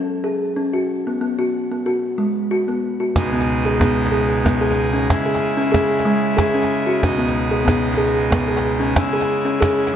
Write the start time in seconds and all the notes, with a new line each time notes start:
Already playing: F#3 C#4
0.24 G#4
0.57 C#4
0.73 F#4
1.07 B3
1.21 B3
1.39 F#4
1.72 B3
1.86 F#4
2.18 G#3
2.51 F#4
2.68 B3
3.00 F#4
3.16 C#2 B2 G#3 D#4, cajon bass, cajon slap
3.33 B3
3.49 cajon slap
3.65 G#4
3.79 B3, cajon bass, cajon slap
4.12 G#4
4.44 B3, cajon bass, cajon slap
4.61 G#4
4.93 C#4
5.10 C#3 E4, cajon bass, cajon slap
5.26 G#4
5.57 C#4
5.72 G#4, cajon bass, cajon slap
6.05 G#3, cajon slap
6.37 G#4, cajon bass, cajon slap
6.54 C#4
6.86 F#4
7.02 C#2 B2 D#4, cajon bass, cajon slap
7.18 B3
7.35 cajon slap
7.51 G#4
7.65 B3, cajon bass, cajon slap
7.98 G#4
8.31 B3, cajon bass, cajon slap
8.48 G#4
8.80 C#4
8.96 C#3 E4, cajon bass, cajon slap
9.13 G#4, cajon slap
9.45 C#4, cajon slap
9.60 G#4, cajon bass, cajon slap